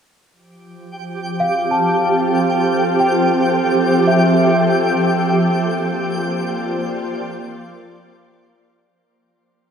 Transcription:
0.31 8.90 F3 medium
0.31 8.93 G4 medium
0.31 8.93 G5 medium
0.59 6.25 G4 medium
0.95 6.04 C4 medium
1.38 6.33 A4 medium
1.38 2.58 F5 medium
1.71 2.87 A5 soft
3.00 4.18 G5 soft
4.08 5.11 E5 medium
4.80 8.89 A#3 medium
5.23 8.90 F4 medium
5.54 8.90 C5 medium
6.09 8.89 D5 medium

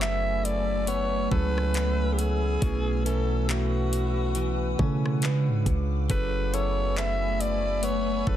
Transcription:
0.00 1.28 F#1 loud
0.00 0.29 F#3 medium
0.00 2.64 F#3 medium
0.00 2.59 A3 medium
0.00 0.88 B3 medium
0.00 0.29 C#4 medium
0.00 0.30 E4 medium
0.00 1.75 E4 medium
0.00 0.30 G#4 medium
0.00 0.30 A4 medium
0.00 1.31 A4 medium
0.00 0.30 B4 medium
0.00 0.46 E5 loud
0.00 2.59 G#5 medium
0.00 6.06 B5 medium
0.00 5.19 E6 medium
0.00 clap loud
0.45 0.90 D5 loud
0.45 closed hi-hat medium
0.87 1.75 B3 medium
0.87 1.31 C#5 loud
0.87 closed hi-hat medium
1.31 2.58 C#2 loud
1.31 2.16 F#3 medium
1.31 2.16 C#4 medium
1.31 2.16 E4 medium
1.31 2.17 G#4 medium
1.31 1.78 A4 medium
1.31 2.17 A4 medium
1.31 2.15 B4 loud
1.31 2.17 C#5 medium
1.31 kick loud
1.58 cross-stick medium
1.74 3.06 B3 medium
1.74 2.62 E4 medium
1.74 clap loud
1.74 closed hi-hat medium
2.13 2.20 G4 medium
2.19 3.06 G#4 loud
2.19 closed hi-hat medium
2.62 4.75 B1 loud
2.62 3.77 B2 medium
2.62 5.22 B2 medium
2.62 3.77 A3 medium
2.62 3.06 C#4 medium
2.62 3.77 C#4 medium
2.62 3.78 E4 medium
2.62 6.06 B4 medium
2.62 3.78 B4 medium
2.62 5.20 F#5 medium
2.62 kick loud
2.62 closed hi-hat medium
3.05 4.35 E3 medium
3.05 3.48 A3 medium
3.05 4.79 C#4 medium
3.05 3.51 A4 medium
3.05 closed hi-hat medium
3.49 5.33 A3 medium
3.49 5.23 F#4 medium
3.49 clap loud
3.93 closed hi-hat medium
4.35 5.33 E3 medium
4.35 closed hi-hat medium
4.79 5.23 B2 medium
4.79 5.49 C#3 loud
4.79 5.23 A3 medium
4.79 6.53 C#4 medium
4.79 5.23 C#4 medium
4.79 5.24 E4 medium
4.79 5.24 A4 loud
4.79 kick medium
5.06 cross-stick medium
5.22 5.95 C#3 medium
5.22 6.20 C#3 medium
5.22 5.95 G#3 medium
5.22 5.96 D4 medium
5.22 5.96 F4 medium
5.22 5.96 B4 loud
5.22 6.09 F5 medium
5.22 6.09 D6 medium
5.22 clap loud
5.22 closed hi-hat medium
5.48 5.65 G#2 loud
5.66 6.08 C#2 loud
5.66 kick loud
5.66 closed hi-hat medium
6.09 8.23 F#1 loud
6.09 7.25 F#3 medium
6.09 8.37 F#3 medium
6.09 8.37 A3 medium
6.09 7.25 C#4 medium
6.09 7.25 E4 medium
6.09 7.25 G#4 medium
6.09 6.54 A4 medium
6.09 7.26 A4 medium
6.09 6.56 B4 loud
6.09 7.26 B4 medium
6.09 8.37 G#5 medium
6.09 8.37 B5 medium
6.09 8.37 E6 medium
6.09 kick loud
6.09 closed hi-hat medium
6.53 7.83 B3 medium
6.53 6.96 E4 medium
6.53 8.27 A4 medium
6.53 6.99 C#5 loud
6.53 closed hi-hat medium
6.97 8.37 E4 medium
6.97 7.43 E5 loud
6.97 clap loud
7.41 7.86 D5 loud
7.41 closed hi-hat medium
7.83 8.37 B3 medium
7.83 8.30 C#5 loud
7.83 closed hi-hat medium
8.27 8.37 F#1 loud
8.27 8.37 F#3 medium
8.27 8.37 C#4 medium
8.27 8.37 E4 medium
8.27 8.37 G#4 medium
8.27 8.37 A4 medium
8.27 8.37 B4 loud
8.27 8.37 C#5 medium
8.27 kick loud

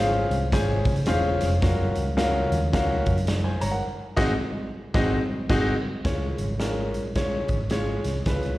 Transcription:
0.00 0.23 G#1 medium
0.00 0.37 C#4 medium
0.00 0.37 F4 medium
0.00 0.37 G#4 medium
0.00 0.37 C5 medium
0.00 0.37 F5 loud
0.30 0.54 C2 medium
0.30 closed hi-hat medium
0.52 0.87 G#1 medium
0.52 0.93 C#4 medium
0.52 0.93 F4 medium
0.52 0.93 G#4 medium
0.52 0.94 C5 medium
0.52 0.93 G#5 medium
0.52 kick medium
0.52 snare loud
0.52 closed hi-hat loud
0.85 1.04 C#3 medium
0.85 kick medium
0.85 closed hi-hat medium
0.96 closed hi-hat medium
1.06 1.36 E1 medium
1.06 1.48 C#4 loud
1.06 1.48 F4 medium
1.06 1.48 G#4 medium
1.06 1.48 C5 medium
1.06 1.48 F5 loud
1.06 snare loud
1.06 closed hi-hat medium
1.41 1.60 F1 medium
1.41 snare soft
1.41 closed hi-hat medium
1.62 1.91 F#1 loud
1.62 2.03 C#4 medium
1.62 2.03 F4 medium
1.62 2.03 F#4 medium
1.62 2.03 A#4 medium
1.62 2.03 F5 medium
1.62 kick loud
1.62 snare loud
1.62 closed hi-hat medium
1.95 2.44 C#2 medium
1.95 closed hi-hat medium
2.17 2.58 C#4 medium
2.17 2.58 F4 medium
2.17 2.58 F#4 medium
2.17 2.58 A#4 medium
2.17 2.58 F5 medium
2.17 snare loud
2.17 closed hi-hat medium
2.51 2.70 D#2 medium
2.51 closed hi-hat medium
2.73 3.02 C#2 medium
2.73 3.14 C#4 medium
2.73 3.14 F4 medium
2.73 3.14 F#4 medium
2.73 3.14 A#4 medium
2.73 3.14 F5 medium
2.73 kick medium
2.73 snare loud
2.73 closed hi-hat loud
3.06 3.55 F#2 medium
3.06 kick loud
3.06 closed hi-hat medium
3.18 closed hi-hat medium
3.27 snare loud
3.27 closed hi-hat medium
3.44 3.61 C5 medium
3.44 3.61 G#5 medium
3.61 3.81 G1 medium
3.61 3.72 C#5 medium
3.61 3.72 A#5 medium
3.61 closed hi-hat medium
3.71 3.83 A#4 medium
3.71 3.82 F#5 medium
4.16 4.32 G#1 loud
4.16 4.32 C4 loud
4.16 4.32 D#4 loud
4.16 4.32 F#4 loud
4.16 4.32 G#4 loud
4.16 4.32 D#5 loud
4.16 kick loud
4.16 snare loud
4.16 crash medium
4.94 5.17 G#1 loud
4.94 5.17 C4 loud
4.94 5.17 D#4 loud
4.94 5.17 F#4 medium
4.94 5.17 G#4 medium
4.94 5.18 D#5 loud
4.94 kick loud
4.94 snare loud
5.49 5.72 G#1 medium
5.49 5.72 C4 loud
5.49 5.72 D#4 loud
5.49 5.72 F#4 loud
5.49 5.73 G#4 loud
5.49 5.73 D#5 loud
5.49 kick loud
5.49 snare loud
5.49 crash medium
6.04 6.34 C#2 loud
6.04 6.46 G#3 medium
6.04 6.46 C#4 medium
6.04 6.46 F4 medium
6.04 6.46 C#5 medium
6.04 kick loud
6.04 snare loud
6.04 closed hi-hat medium
6.38 6.93 G#1 medium
6.38 closed hi-hat medium
6.60 7.01 G#3 medium
6.60 7.01 C#4 medium
6.60 7.01 F4 medium
6.60 7.01 A#4 medium
6.60 snare loud
6.60 closed hi-hat medium
6.93 7.42 A#1 medium
6.93 closed hi-hat medium
7.15 7.56 G#3 medium
7.15 7.57 C#4 medium
7.15 7.57 F4 medium
7.15 7.57 C#5 medium
7.15 kick medium
7.15 snare loud
7.15 closed hi-hat medium
7.48 7.97 G#1 medium
7.48 kick medium
7.48 closed hi-hat medium
7.70 8.12 G#3 medium
7.70 8.12 C#4 medium
7.70 8.12 F4 medium
7.70 8.12 C#5 medium
7.70 snare medium
7.70 closed hi-hat medium
8.04 8.24 C2 medium
8.04 snare soft
8.04 closed hi-hat medium
8.26 8.55 C#2 loud
8.26 8.58 G#3 medium
8.26 8.58 C#4 medium
8.26 8.58 F4 medium
8.26 8.58 B4 medium
8.26 kick loud
8.26 snare medium
8.26 closed hi-hat medium
8.43 closed hi-hat soft

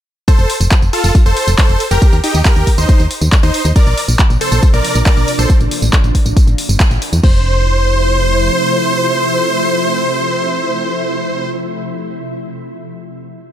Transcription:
0.28 0.52 A4 medium
0.28 0.52 C5 loud
0.28 kick loud
0.28 closed hi-hat loud
0.28 tambourine medium
0.39 0.46 F1 medium
0.39 closed hi-hat soft
0.39 tambourine soft
0.50 open hi-hat loud
0.61 0.68 F1 medium
0.61 closed hi-hat soft
0.61 tambourine medium
0.71 kick loud
0.71 clap loud
0.71 closed hi-hat loud
0.71 tambourine medium
0.82 0.90 F1 medium
0.82 closed hi-hat soft
0.82 tambourine soft
0.93 1.17 F4 medium
0.93 1.17 A4 loud
0.93 open hi-hat loud
1.04 1.12 F1 medium
1.04 closed hi-hat soft
1.04 tambourine medium
1.15 kick loud
1.15 closed hi-hat loud
1.15 tambourine medium
1.26 1.33 F1 medium
1.26 1.50 A4 medium
1.26 1.50 C5 loud
1.26 closed hi-hat soft
1.26 tambourine soft
1.37 open hi-hat loud
1.48 1.55 F1 medium
1.48 tambourine medium
1.58 1.82 A4 medium
1.58 1.82 C5 loud
1.58 kick loud
1.58 clap loud
1.58 closed hi-hat loud
1.58 tambourine medium
1.69 1.77 F1 medium
1.69 closed hi-hat soft
1.69 tambourine soft
1.80 open hi-hat loud
1.91 1.99 F1 medium
1.91 2.15 G4 medium
1.91 2.15 A#4 medium
1.91 closed hi-hat soft
1.91 tambourine medium
2.02 kick loud
2.02 closed hi-hat loud
2.02 tambourine medium
2.13 2.20 D#2 medium
2.13 closed hi-hat soft
2.13 tambourine soft
2.24 2.39 D#4 medium
2.24 2.39 G4 medium
2.24 open hi-hat loud
2.34 2.42 D#2 medium
2.34 closed hi-hat soft
2.34 tambourine medium
2.45 2.69 G4 medium
2.45 2.69 A#4 loud
2.45 kick loud
2.45 clap loud
2.45 closed hi-hat loud
2.45 tambourine medium
2.56 2.64 D#2 medium
2.56 closed hi-hat soft
2.56 tambourine soft
2.67 kick medium
2.67 open hi-hat loud
2.78 2.86 D#2 medium
2.78 3.02 D#4 medium
2.78 3.02 C5 loud
2.78 tambourine medium
2.89 kick loud
2.89 closed hi-hat medium
2.89 tambourine medium
3.00 3.07 D#2 medium
3.00 closed hi-hat soft
3.00 tambourine soft
3.11 open hi-hat loud
3.21 3.29 D#2 medium
3.21 closed hi-hat soft
3.21 tambourine medium
3.32 kick loud
3.32 clap loud
3.32 closed hi-hat medium
3.32 tambourine medium
3.43 3.51 D#2 medium
3.43 3.67 D#4 medium
3.43 3.67 C5 loud
3.43 closed hi-hat soft
3.43 tambourine soft
3.54 open hi-hat loud
3.65 3.72 D#2 medium
3.65 tambourine medium
3.76 5.48 C3 medium
3.76 5.48 F3 medium
3.76 5.48 A#3 medium
3.76 5.48 D4 medium
3.76 4.00 A#4 medium
3.76 4.00 D5 loud
3.76 kick loud
3.76 closed hi-hat medium
3.76 tambourine medium
3.87 3.94 A#1 medium
3.87 closed hi-hat soft
3.87 tambourine soft
3.98 open hi-hat loud
4.08 4.16 A#1 medium
4.08 closed hi-hat soft
4.08 tambourine medium
4.19 kick loud
4.19 clap loud
4.19 closed hi-hat loud
4.19 tambourine medium
4.30 4.38 A#1 medium
4.30 closed hi-hat soft
4.30 tambourine soft
4.41 4.65 A4 medium
4.41 4.65 C5 medium
4.41 open hi-hat loud
4.52 4.59 A#1 medium
4.52 closed hi-hat soft
4.52 tambourine medium
4.63 kick loud
4.63 closed hi-hat medium
4.63 tambourine medium
4.74 4.81 A#1 medium
4.74 4.97 A#4 medium
4.74 4.97 D5 medium
4.74 closed hi-hat soft
4.74 tambourine soft
4.85 open hi-hat loud
4.95 5.03 A#1 medium
4.95 tambourine medium
5.06 5.30 A#4 medium
5.06 5.30 D5 loud
5.06 kick loud
5.06 clap loud
5.06 closed hi-hat medium
5.06 tambourine medium
5.17 5.25 A#1 medium
5.17 closed hi-hat soft
5.17 tambourine soft
5.28 open hi-hat loud
5.39 5.46 A#1 medium
5.39 5.50 A4 medium
5.39 5.50 C5 medium
5.39 closed hi-hat soft
5.39 tambourine medium
5.50 kick loud
5.50 closed hi-hat medium
5.50 tambourine medium
5.60 5.68 A1 medium
5.60 closed hi-hat soft
5.60 tambourine soft
5.71 open hi-hat loud
5.82 5.90 A1 medium
5.82 closed hi-hat soft
5.82 tambourine medium
5.93 kick loud
5.93 clap loud
5.93 closed hi-hat loud
5.93 tambourine medium
6.04 6.12 A1 medium
6.04 closed hi-hat soft
6.04 tambourine soft
6.15 kick medium
6.15 open hi-hat loud
6.26 6.33 A1 medium
6.26 closed hi-hat soft
6.26 tambourine medium
6.37 kick loud
6.37 closed hi-hat medium
6.37 tambourine medium
6.47 6.55 A1 medium
6.47 closed hi-hat soft
6.47 tambourine soft
6.58 open hi-hat loud
6.69 6.77 G1 medium
6.69 closed hi-hat soft
6.69 tambourine medium
6.80 kick loud
6.80 clap loud
6.80 closed hi-hat medium
6.80 tambourine medium
6.91 6.98 A1 medium
6.91 closed hi-hat soft
6.91 tambourine soft
7.02 open hi-hat loud
7.13 7.20 E2 medium
7.13 closed hi-hat soft
7.13 tambourine medium
7.23 8.50 F1 loud
7.23 11.47 C3 medium
7.23 11.47 F3 medium
7.23 11.47 A3 medium
7.23 11.47 E4 medium
7.23 11.47 C5 loud
7.23 kick loud
7.23 crash medium

